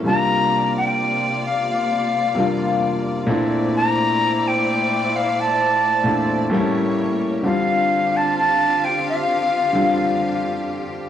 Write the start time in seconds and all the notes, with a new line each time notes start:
0.04 C3 G3 A#3 D4 F4 D5 A#5
0.08 F4
0.77 G5
1.45 F5
1.71 F5
2.35 C3 G3 A#3 D4
2.39 F4
3.27 A#2 A3 C4 D4 E4 C5 D5
3.31 E4
3.76 A#5
4.48 G5
5.16 F5
5.40 A5
6.04 A#2 A3 C4 D4
6.09 E4
6.50 A2 G3 A#3 C4 G4 C#5
6.54 E4
6.60 C#4
7.43 D3 G3 C4 D4 F4 F5
7.47 F4
8.17 A5
8.38 A5
8.85 G5
9.09 F5
9.73 D3 G3 C4 D4
9.78 F4